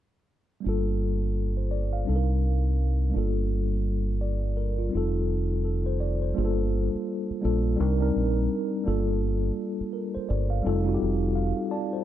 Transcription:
0.60 2.02 G3 medium
0.60 2.03 A#3 medium
0.65 2.04 G1 medium
0.65 2.04 D4 medium
0.65 2.05 F4 medium
0.69 2.06 A4 medium
1.57 1.70 C5 soft
1.71 1.91 D5 medium
1.93 2.26 F5 medium
2.05 3.11 C2 medium
2.05 3.09 G3 medium
2.05 3.13 C4 medium
2.05 3.13 D4 medium
2.05 3.14 D#4 medium
2.05 2.15 A4 medium
2.16 3.18 A#4 medium
3.10 4.87 G3 medium
3.10 4.88 A#3 medium
3.10 4.89 D4 medium
3.16 4.89 G1 medium
3.16 4.20 F4 medium
3.16 4.21 A4 medium
4.21 4.55 D5 medium
4.57 4.77 A#4 medium
4.78 4.94 F4 medium
4.89 6.30 G3 medium
4.89 6.31 C4 medium
4.93 6.32 F1 medium
4.93 6.32 D#4 medium
4.93 6.34 F4 medium
4.97 5.64 A4 medium
5.65 5.85 A4 soft
5.86 5.99 C5 medium
6.00 6.20 D5 medium
6.22 6.55 C5 medium
6.34 6.87 G1 medium
6.34 7.29 G3 medium
6.34 7.30 A#3 medium
6.34 7.30 D4 medium
6.34 7.31 F4 medium
6.38 6.44 G#4 medium
6.45 7.34 A4 medium
6.95 muted fingered electric bass stroke soft
7.31 muted fingered electric bass stroke soft
7.41 7.75 A#1 medium
7.41 7.75 G3 medium
7.41 7.78 A#3 medium
7.41 7.77 D4 medium
7.41 7.79 F4 medium
7.45 7.79 A4 medium
7.76 8.11 C2 medium
7.76 7.95 G3 medium
7.76 7.96 C4 medium
7.76 7.96 D4 medium
7.76 7.97 D#4 medium
7.81 7.98 A#4 medium
7.98 8.82 G3 medium
7.98 8.85 C4 medium
7.98 8.84 D4 medium
7.98 8.86 D#4 medium
8.02 8.86 A#4 medium
8.16 8.47 A#1 medium
8.84 9.50 G1 medium
8.84 10.09 G3 medium
8.84 10.09 A#3 medium
8.84 10.10 D4 medium
8.84 10.10 F4 medium
8.88 9.58 A4 medium
9.81 muted fingered electric bass stroke soft
9.93 10.13 A#4 soft
10.15 10.28 C5 medium
10.15 muted fingered electric bass stroke soft
10.29 10.61 G1 medium
10.29 10.49 D5 medium
10.50 10.84 F5 medium
10.63 10.97 F1 loud
10.63 10.81 G3 medium
10.63 10.82 C4 medium
10.63 10.82 D#4 medium
10.63 10.83 F4 medium
10.63 10.83 A4 medium
10.84 11.91 G3 medium
10.84 11.91 C4 medium
10.84 11.92 D#4 medium
10.84 11.92 F4 medium
10.88 10.92 F#4 medium
10.94 11.96 G4 medium
11.02 11.51 F1 medium
11.35 11.68 F5 medium
11.71 11.91 D5 medium
11.71 12.04 A5 medium
11.93 12.04 C5 medium

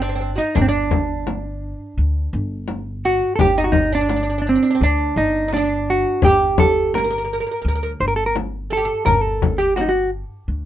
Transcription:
0.00 0.37 G1 medium
0.00 0.08 C4 medium
0.00 0.38 D4 medium
0.09 0.14 C4 soft
0.15 0.19 C4 soft
0.21 0.30 C4 soft
0.36 0.55 D#4 medium
0.36 0.57 D#4 medium
0.36 0.39 F#4 soft
0.55 1.73 G1 medium
0.55 0.61 D4 medium
0.55 0.67 D4 medium
0.55 frame drum medium
0.62 0.68 C4 medium
0.68 2.64 D4 medium
0.91 frame drum medium
1.27 frame drum medium
1.98 2.27 D2 medium
2.33 3.20 G1 medium
2.68 frame drum medium
3.05 3.39 F#4 medium
3.05 3.35 F#4 medium
3.36 3.57 G4 medium
3.36 3.40 A4 medium
3.36 frame drum medium
3.40 4.56 G1 medium
3.40 3.59 G4 medium
3.58 3.92 D#4 medium
3.58 3.64 D#4 medium
3.64 3.71 F#4 medium
3.72 3.92 D#4 medium
3.72 frame drum medium
3.92 4.00 D4 medium
3.92 4.40 D4 medium
4.01 4.08 D4 soft
4.09 4.15 D4 soft
4.09 frame drum medium
4.16 4.22 D4 soft
4.23 4.28 D4 soft
4.30 4.37 D4 soft
4.38 4.46 D4 soft
4.38 4.47 D4 medium
4.47 4.81 C4 medium
4.47 4.54 D4 soft
4.55 4.61 D4 soft
4.63 4.69 D4 soft
4.70 4.74 D4 medium
4.75 4.82 C4 medium
4.81 5.10 D2 medium
4.81 5.48 D4 medium
4.81 5.16 D4 medium
5.16 6.04 G1 medium
5.16 5.53 D#4 medium
5.48 5.54 D#4 medium
5.53 5.90 D4 medium
5.53 6.25 D4 medium
5.53 frame drum medium
5.90 6.24 F#4 medium
6.22 7.39 G1 medium
6.22 6.59 G4 loud
6.22 6.97 G4 medium
6.22 frame drum medium
6.58 6.95 A4 medium
6.58 frame drum medium
6.94 7.96 A#4 medium
6.94 7.03 A#4 medium
6.94 frame drum medium
7.04 7.09 A#4 soft
7.11 7.17 A#4 medium
7.18 7.23 A#4 soft
7.25 7.31 A#4 soft
7.33 7.39 A#4 soft
7.40 7.45 A#4 medium
7.47 7.50 A#4 soft
7.51 7.60 A#4 soft
7.62 7.94 D2 medium
7.62 7.67 A#4 soft
7.68 7.74 A#4 medium
7.75 7.82 A#4 soft
7.83 7.91 A#4 medium
8.00 8.87 G1 medium
8.00 8.07 C5 medium
8.08 8.16 A#4 medium
8.16 8.26 A4 medium
8.26 8.35 A#4 medium
8.36 frame drum medium
8.70 8.77 A4 medium
8.70 9.05 A4 medium
8.77 8.84 G4 medium
8.85 9.05 A4 medium
9.06 10.22 G1 medium
9.06 9.21 A#4 medium
9.06 9.58 A#4 medium
9.06 frame drum medium
9.21 9.59 A4 medium
9.42 frame drum medium
9.58 9.77 G4 medium
9.58 9.76 G4 medium
9.76 9.83 F#4 medium
9.76 10.10 F#4 medium
9.76 frame drum medium
9.81 9.90 D#4 medium
9.89 10.10 F#4 medium
10.48 10.65 D2 medium

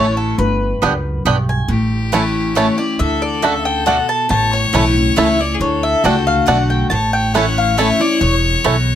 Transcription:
0.00 0.32 A1 medium
0.00 0.36 E3 medium
0.00 0.37 A3 medium
0.00 0.37 C#4 medium
0.00 0.37 E4 medium
0.00 0.17 C#5 loud
0.17 0.38 A4 medium
0.38 0.71 G1 medium
0.38 0.82 G2 medium
0.38 1.22 B4 medium
0.82 1.19 C#2 medium
0.82 1.24 F#2 medium
0.82 0.91 B3 medium
0.82 0.92 B3 medium
0.82 0.92 D4 medium
0.82 0.92 G4 medium
0.82 0.93 G4 medium
0.82 0.92 D5 medium
0.82 0.92 G5 medium
1.25 1.62 B1 medium
1.25 1.67 G2 medium
1.25 1.35 B3 medium
1.25 1.36 B3 medium
1.25 1.36 D4 medium
1.25 1.35 G4 loud
1.25 1.36 G4 medium
1.25 1.35 D5 medium
1.25 1.35 G5 loud
1.49 1.69 G#5 medium
1.68 2.68 A1 medium
1.68 2.52 A2 medium
1.68 2.96 G4 medium
2.12 2.54 E3 medium
2.12 2.22 A3 medium
2.12 2.23 A3 medium
2.12 2.54 A3 loud
2.12 2.23 C#4 medium
2.12 2.55 C#4 loud
2.12 2.22 E4 medium
2.12 2.23 E4 medium
2.12 2.55 E4 medium
2.12 2.22 C#5 medium
2.12 2.22 A5 loud
2.55 2.77 E3 medium
2.55 2.66 A3 medium
2.55 2.78 A3 medium
2.55 2.67 A3 medium
2.55 2.78 C#4 medium
2.55 2.67 C#4 medium
2.55 2.66 E4 medium
2.55 2.76 E4 medium
2.55 2.67 E4 medium
2.55 2.77 C#5 medium
2.55 2.66 C#5 medium
2.55 2.66 A5 loud
2.78 2.99 C#4 soft
2.78 2.98 E4 medium
2.78 2.99 D5 medium
2.99 3.99 D2 medium
2.99 3.82 D3 medium
2.99 4.27 A4 loud
2.99 3.21 E5 medium
3.22 3.43 D5 medium
3.42 3.84 C#3 medium
3.42 3.52 A3 medium
3.42 3.53 A3 medium
3.42 3.54 D4 medium
3.42 3.52 F#4 medium
3.42 3.54 F#4 medium
3.42 3.53 D5 medium
3.42 3.65 E5 medium
3.42 3.53 A5 medium
3.65 3.86 G5 medium
3.86 4.28 B2 medium
3.86 3.96 A3 medium
3.86 3.97 A3 medium
3.86 3.97 D4 medium
3.86 3.96 F#4 medium
3.86 3.97 F#4 medium
3.86 3.96 D5 loud
3.86 4.08 F#5 medium
3.86 3.97 A5 loud
4.09 4.29 A5 loud
4.29 4.63 A1 medium
4.29 5.12 A2 medium
4.29 5.56 C#5 loud
4.29 4.52 A5 loud
4.53 4.66 C#5 loud
4.73 5.10 B1 medium
4.73 4.95 E3 medium
4.73 4.95 A3 medium
4.73 4.83 A3 medium
4.73 4.84 A3 medium
4.73 4.95 C#4 medium
4.73 4.84 C#4 medium
4.73 4.83 E4 medium
4.73 4.94 E4 medium
4.73 4.84 E4 medium
4.73 4.83 C#5 medium
4.73 4.83 A5 medium
4.96 5.16 C#4 soft
4.96 5.16 E4 medium
5.16 5.54 C#2 medium
5.16 5.38 E3 medium
5.16 5.26 A3 medium
5.16 5.38 A3 medium
5.16 5.28 A3 medium
5.16 5.39 C#4 medium
5.16 5.28 C#4 medium
5.16 5.26 E4 medium
5.16 5.38 E4 medium
5.16 5.28 E4 medium
5.16 5.27 C#5 loud
5.16 5.39 E5 medium
5.16 5.27 A5 loud
5.40 5.61 C#4 soft
5.40 5.61 D5 medium
5.54 5.62 G#4 medium
5.59 5.93 D2 medium
5.59 6.43 D3 medium
5.59 6.70 A4 medium
5.59 5.83 C#5 medium
5.83 6.04 E5 medium
6.04 6.41 C#2 medium
6.04 6.13 A3 medium
6.04 6.45 A3 medium
6.04 6.15 A3 medium
6.04 6.46 D4 medium
6.04 6.15 D4 medium
6.04 6.13 F#4 medium
6.04 6.46 F#4 loud
6.04 6.15 F#4 medium
6.04 6.14 D5 medium
6.04 6.26 G5 medium
6.04 6.14 A5 medium
6.27 6.47 F5 medium
6.46 6.85 B1 medium
6.46 6.88 D3 medium
6.46 6.88 A3 medium
6.46 6.57 A3 medium
6.46 6.58 A3 medium
6.46 6.89 D4 medium
6.46 6.58 D4 medium
6.46 6.57 F#4 medium
6.46 6.89 F#4 medium
6.46 6.58 F#4 medium
6.46 6.57 D5 loud
6.46 6.69 F#5 medium
6.46 6.57 A5 loud
6.70 6.89 G5 medium
6.90 7.90 A1 medium
6.90 7.74 A2 medium
6.90 8.95 C#5 loud
6.90 7.12 A5 loud
7.13 7.34 G5 medium
7.34 7.76 E3 medium
7.34 7.44 A3 medium
7.34 7.45 A3 medium
7.34 7.77 A3 medium
7.34 7.45 C#4 medium
7.34 7.77 C#4 medium
7.34 7.44 E4 medium
7.34 7.45 E4 medium
7.34 7.77 E4 medium
7.34 7.44 C#5 medium
7.34 7.56 F#5 medium
7.34 7.44 A5 loud
7.58 7.78 F5 medium
7.78 7.99 E3 medium
7.78 7.87 A3 medium
7.78 7.88 A3 medium
7.78 8.00 A3 medium
7.78 7.88 C#4 medium
7.78 8.00 C#4 medium
7.78 7.87 E4 medium
7.78 7.88 E4 medium
7.78 7.98 E4 loud
7.78 7.87 C#5 medium
7.78 8.00 E5 medium
7.78 7.87 A5 loud
8.00 8.21 C#4 medium
8.00 8.20 E4 medium
8.00 8.20 D5 medium
8.21 8.54 E1 medium
8.21 8.95 E2 medium
8.21 8.34 C#5 medium
8.64 8.95 B1 medium
8.64 8.95 B2 medium
8.64 8.74 A3 medium
8.64 8.75 A3 medium
8.64 8.75 C#4 medium
8.64 8.74 E4 medium
8.64 8.75 E4 medium
8.64 8.74 C#5 medium
8.64 8.74 A5 medium

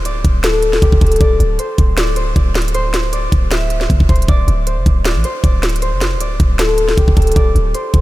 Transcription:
0.00 0.23 D1 medium
0.00 1.59 C5 loud
0.05 1.20 D5 medium
0.05 closed hi-hat loud
0.25 0.80 D1 loud
0.25 kick loud
0.25 closed hi-hat medium
0.44 1.01 A4 medium
0.44 snare loud
0.44 closed hi-hat medium
0.62 closed hi-hat medium
0.73 snare medium
0.82 0.92 D1 loud
0.82 3.18 G4 medium
0.82 kick loud
0.82 closed hi-hat medium
0.92 1.01 D1 loud
0.92 kick medium
1.01 1.20 D1 loud
1.01 3.21 A4 medium
1.01 kick medium
1.01 closed hi-hat soft
1.01 open hi-hat medium
1.07 closed hi-hat medium
1.12 closed hi-hat medium
1.16 closed hi-hat medium
1.21 1.39 D1 loud
1.21 1.97 D5 loud
1.21 kick loud
1.21 closed hi-hat medium
1.40 1.58 D1 loud
1.40 closed hi-hat medium
1.59 2.16 C5 medium
1.59 closed hi-hat medium
1.78 2.34 D1 loud
1.78 kick medium
1.78 closed hi-hat medium
1.97 2.35 D5 medium
1.97 snare loud
1.97 closed hi-hat medium
2.16 2.74 C5 medium
2.16 closed hi-hat medium
2.36 3.28 D1 loud
2.36 3.12 D5 medium
2.36 kick loud
2.36 closed hi-hat medium
2.55 snare loud
2.55 closed hi-hat medium
2.62 closed hi-hat medium
2.68 closed hi-hat medium
2.74 4.09 C5 loud
2.74 closed hi-hat medium
2.94 snare medium
2.94 closed hi-hat medium
3.13 4.28 D5 medium
3.13 closed hi-hat loud
3.32 3.88 D1 loud
3.32 kick loud
3.32 closed hi-hat medium
3.51 5.24 E5 loud
3.51 snare loud
3.51 closed hi-hat medium
3.70 closed hi-hat medium
3.81 snare medium
3.90 4.00 F1 loud
3.90 kick loud
3.90 closed hi-hat medium
4.00 4.09 D1 loud
4.00 kick medium
4.09 4.28 D1 loud
4.09 4.66 C5 medium
4.09 kick loud
4.09 closed hi-hat medium
4.09 open hi-hat medium
4.16 closed hi-hat medium
4.22 closed hi-hat medium
4.28 4.47 D1 loud
4.28 5.05 D5 loud
4.28 kick loud
4.28 closed hi-hat medium
4.48 4.79 D1 loud
4.48 closed hi-hat medium
4.67 5.24 C5 medium
4.67 closed hi-hat loud
4.77 4.86 F1 loud
4.86 5.17 D1 loud
4.86 kick medium
4.86 closed hi-hat medium
5.05 5.44 D5 medium
5.05 snare loud
5.05 closed hi-hat medium
5.15 5.24 A1 loud
5.24 5.82 C5 medium
5.24 closed hi-hat medium
5.44 5.94 D1 loud
5.44 6.20 D5 medium
5.44 kick loud
5.44 closed hi-hat medium
5.63 snare loud
5.63 closed hi-hat medium
5.69 closed hi-hat medium
5.76 closed hi-hat medium
5.82 7.74 C5 loud
5.82 closed hi-hat medium
5.92 6.18 F1 loud
6.01 snare medium
6.01 closed hi-hat medium
6.16 6.39 D1 loud
6.20 7.36 D5 medium
6.20 closed hi-hat loud
6.40 6.95 D1 loud
6.40 kick loud
6.40 closed hi-hat medium
6.59 7.17 A4 medium
6.59 snare loud
6.59 closed hi-hat medium
6.78 closed hi-hat medium
6.89 snare medium
6.98 7.07 D1 loud
6.98 8.01 G4 medium
6.98 kick loud
6.98 closed hi-hat medium
7.08 7.16 D1 loud
7.08 kick medium
7.17 7.35 D1 loud
7.17 8.01 A4 medium
7.17 kick loud
7.17 closed hi-hat medium
7.17 open hi-hat medium
7.22 closed hi-hat medium
7.27 closed hi-hat medium
7.32 closed hi-hat medium
7.36 7.55 D1 loud
7.36 8.01 D5 loud
7.36 kick loud
7.36 closed hi-hat medium
7.55 7.74 D1 loud
7.55 closed hi-hat medium
7.75 8.01 C5 medium
7.75 closed hi-hat loud
7.94 8.01 D1 loud
7.94 kick loud
7.94 closed hi-hat medium

